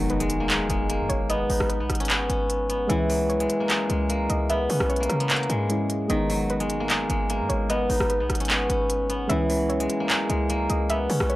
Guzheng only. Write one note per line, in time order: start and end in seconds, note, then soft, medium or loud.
0.00 2.95 D#3 loud
0.00 2.95 F#3 medium
0.00 1.37 G#4 medium
0.00 1.02 A#4 medium
0.00 0.21 C#5 medium
0.20 0.49 G#3 medium
0.40 0.89 A#3 medium
0.50 0.68 G#3 medium
0.70 2.95 G#3 medium
0.90 1.36 A#3 medium
1.30 1.80 B3 loud
1.50 2.96 D#4 medium
1.80 2.09 B3 medium
2.00 2.29 C#4 medium
2.10 2.69 B3 medium
2.30 4.69 C#4 medium
2.70 3.66 B3 medium
2.90 6.15 E3 loud
3.10 6.15 F#3 medium
3.40 3.69 G#3 medium
3.60 4.09 A#3 medium
3.70 3.88 G#3 medium
3.90 5.48 G#3 medium
4.10 4.56 A#3 loud
4.50 5.06 B3 loud
4.70 7.59 C#4 medium
5.00 5.26 A#3 medium
5.20 5.36 B3 medium
5.30 6.80 A#3 medium
5.50 6.15 G#3 medium
6.10 9.35 D#3 loud
6.30 9.35 F#3 medium
6.60 6.88 G#3 medium
6.80 7.29 A#3 medium
6.90 7.08 G#3 medium
7.10 9.35 G#3 medium
7.30 7.76 A#3 medium
7.70 8.20 B3 loud
7.90 9.36 D#4 medium
8.20 8.49 B3 medium
8.40 8.69 C#4 medium
8.50 9.09 B3 medium
8.70 11.09 C#4 medium
9.10 10.06 B3 medium
9.30 11.36 E3 loud
9.50 11.36 F#3 medium
9.80 10.09 G#3 medium
10.00 10.49 A#3 medium
10.10 10.28 G#3 medium
10.30 11.36 G#3 medium
10.50 10.96 A#3 loud
10.90 11.36 B3 loud
11.10 11.36 C#4 medium